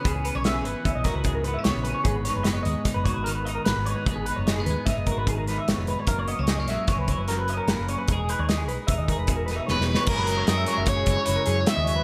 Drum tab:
CC |------------------------------|------------------------------|------------------------------|------------------------------|
HH |x--x--x--x--x--x--x--x--x--x--|x--x--x--x--x--x--x--x--x--x--|x--x--x--x--x--x--x--x--x--x--|x--x--x--x--x--x--x--x--x--x--|
SD |------o--------o--------o-----|---o--o-----o-----------o-----|------o-----o--------o--o-----|------o--o--o-----o-----o-----|
BD |o-----------o--o--o-----------|o-----------o--o--------------|o-----------o--o--o-----------|o-----------o--o--------------|

CC |------------------------------|x-----------------------------|
HH |x--x--x--x--x--x--x--x--------|---x--x--x--x--x--x--x--x--x--|
SD |------o--------------o--o-o-o-|------o--o--------------o-----|
BD |o-----------o--o--o-----------|o-----------o--o--------------|